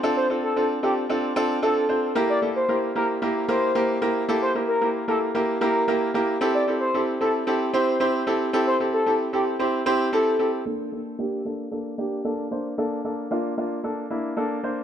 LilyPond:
<<
  \new Staff \with { instrumentName = "Analog synth lead" } { \time 4/4 \key bes \lydian \tempo 4 = 113 r16 c''16 r16 a'8 r16 g'16 r4 r16 a'8. r16 | r16 d''16 r16 c''8 r16 bes'16 r8. c''8. r8. | r16 c''16 r16 bes'8 r16 a'16 r8. bes'8. r8. | r16 d''16 r16 c''8 r16 a'16 r8. c''8. r8. |
r16 c''16 r16 a'8 r16 g'16 r4 r16 a'8. r16 | r1 | r1 | }
  \new Staff \with { instrumentName = "Grand piano" } { \time 4/4 \key bes \lydian <c' d' f' a'>8 <c' d' f' a'>8 <c' d' f' a'>8 <c' d' f' a'>8 <c' d' f' a'>8 <c' d' f' a'>8 <c' d' f' a'>8 <c' d' f' c''>8 | <bes e' g' bes'>8 <bes e' g' a'>8 <bes e' g' bes'>8 <bes e' g' bes'>8 <bes e' g' bes'>8 <bes e' g' bes'>8 <bes e' g' bes'>8 <bes e' g' bes'>8 | <bes e' g' a'>8 <bes e' g' bes'>8 <bes e' g' bes'>8 <bes e' g' bes'>8 <bes e' g' bes'>8 <bes e' g' bes'>8 <bes e' g' bes'>8 <bes e' g' bes'>8 | <c' e' g' a'>8 <c' e' g' a'>8 <c' e' g' a'>8 <c' e' g' a'>8 <c' e' g' a'>8 <c' e' g' c''>8 <c' e' g' c''>8 <c' e' g' a'>8 |
<c' e' g' a'>8 <c' e' g' a'>8 <c' e' g' a'>8 <c' e' g' a'>8 <c' e' g' c''>8 <c' e' g' c''>8 <c' e' g' a'>8 <c' e' g' a'>8 | <bes d' a'>8 <bes d' a'>8 <bes d' g'>8 <bes d' a'>8 <bes d' a'>8 <bes d' g'>8 <bes d' a'>8 <bes d' c''>8 | <bes d' a'>8 <bes d' a'>8 <bes d' f'>8 <bes d' f'>8 <bes d' a'>8 <bes d' e'>8 <bes d' a'>8 <bes d' c''>8 | }
>>